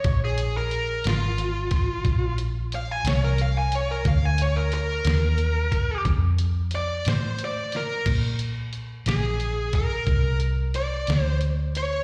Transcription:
Already playing: lead electric guitar C#5
0.04 fingered electric bass A#1, kick, closed hi-hat
0.25 lead electric guitar G#4
0.38 closed hi-hat
0.57 lead electric guitar A#4
0.71 closed hi-hat
1.04 fingered electric bass G#1, snare, closed hi-hat
1.09 lead electric guitar F4
1.38 closed hi-hat
1.71 kick, snare, closed hi-hat
2.05 fingered electric bass A#1, kick, closed hi-hat
2.38 closed hi-hat
2.72 lead electric guitar F5, closed hi-hat
2.91 lead electric guitar G#5
3.04 fingered electric bass C2, lead electric guitar C#5, snare, closed hi-hat
3.24 lead electric guitar A#4
3.38 lead electric guitar F5, closed hi-hat
3.58 lead electric guitar G#5
3.72 lead electric guitar C#5, closed hi-hat
3.91 lead electric guitar A#4
4.05 fingered electric bass D2, lead electric guitar F5, kick, closed hi-hat
4.25 lead electric guitar G#5
4.38 lead electric guitar C#5, closed hi-hat
4.56 lead electric guitar A#4
4.72 lead electric guitar A#4, closed hi-hat
5.05 fingered electric bass D#2, snare, closed hi-hat
5.38 closed hi-hat
5.72 kick, closed hi-hat
6.05 fingered electric bass F2, kick, closed hi-hat
6.38 closed hi-hat
6.71 closed hi-hat
6.75 lead electric guitar D5
7.05 fingered electric bass A2, snare, closed hi-hat
7.09 lead electric guitar C5
7.38 closed hi-hat
7.45 lead electric guitar D5
7.72 snare, closed hi-hat
7.76 lead electric guitar A#4
8.06 fingered electric bass A#2, kick, closed hi-hat, crash
8.39 closed hi-hat
8.73 closed hi-hat
9.06 fingered electric bass A#1, lead electric guitar G#4, snare, closed hi-hat
9.40 closed hi-hat
9.73 lead electric guitar A#4, kick, closed hi-hat
10.07 fingered electric bass C2, kick, closed hi-hat
10.40 closed hi-hat
10.74 lead electric guitar D5, closed hi-hat
11.07 fingered electric bass D2, snare, closed hi-hat
11.23 lead electric guitar C5
11.41 closed hi-hat
11.75 lead electric guitar C#5, closed hi-hat

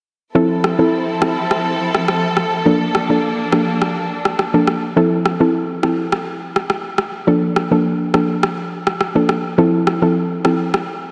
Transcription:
0.35 synth pluck F3 C4 E4 A4, string section F3 C4 E4 A4
0.64 cross-stick
0.79 synth pluck F3 C4 E4 A4
1.21 synth pluck F3 C4 E4 A4, cross-stick
1.51 cross-stick
1.95 cross-stick
2.08 cross-stick
2.37 cross-stick
2.66 synth pluck F3 A#3 D4 A4, string section A#3 D4
2.95 cross-stick
3.09 synth pluck F3 A#3 D4 A4
3.52 synth pluck F3 A#3 D4 A4, cross-stick
3.82 cross-stick
4.25 cross-stick
4.39 cross-stick
4.54 synth pluck F3 A#3 D4 A4
4.67 cross-stick
4.96 synth pluck F3 C4 E4 A4
5.26 cross-stick
5.40 synth pluck F3 C4 E4 A4
5.83 synth pluck F3 C4 E4 A4, cross-stick
6.12 cross-stick
6.56 cross-stick
6.70 cross-stick
6.98 cross-stick
7.27 synth pluck F3 A#3 D4 A4
7.56 cross-stick
7.71 synth pluck F3 A#3 D4 A4
8.14 synth pluck F3 A#3 D4 A4, cross-stick
8.43 cross-stick
8.87 cross-stick
9.01 cross-stick
9.15 synth pluck F3 A#3 D4 A4
9.29 cross-stick
9.58 synth pluck F3 C4 E4 A4
9.87 cross-stick
10.02 synth pluck F3 C4 E4 A4
10.44 synth pluck F3 C4 E4 A4, cross-stick
10.74 cross-stick

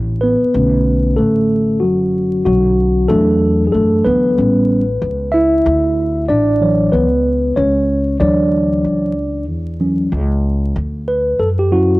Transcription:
Already playing: upright bass A1
0.21 tine electric piano B3 B4
0.42 muted upright bass stroke
0.54 upright bass B1, tine electric piano D3 A3 C#4
1.16 upright bass A1, tine electric piano A3 A4
1.80 upright bass F#1, tine electric piano F#3 F#4
2.45 upright bass B1, tine electric piano F#3 F#4
3.08 upright bass E2, tine electric piano E3 F#3 A3 D4 A4
3.67 tine electric piano G#4
3.72 upright bass F#2, tine electric piano A3 A4
4.04 upright bass D2, tine electric piano B3 B4
4.37 upright bass A1, tine electric piano G3 B3 C#4
5.02 upright bass C#2
5.32 tine electric piano E4 E5
5.66 upright bass D2
6.29 upright bass A1, tine electric piano D4 D5
6.61 tine electric piano E3 F#3 C#5
6.92 upright bass C#2, tine electric piano B3 B4
7.56 upright bass C#2, tine electric piano C#4 C#5
8.20 upright bass D2, tine electric piano E3 F#3 D4 C#5 D5
8.84 upright bass C#2
9.48 upright bass E2
9.80 tine electric piano E3 F#3 C#4
10.12 upright bass C#2
10.76 upright bass D2
11.08 tine electric piano B4
11.39 upright bass F#2, tine electric piano A4
11.59 tine electric piano G4
11.72 tine electric piano F#3 C#4 E4 F#4

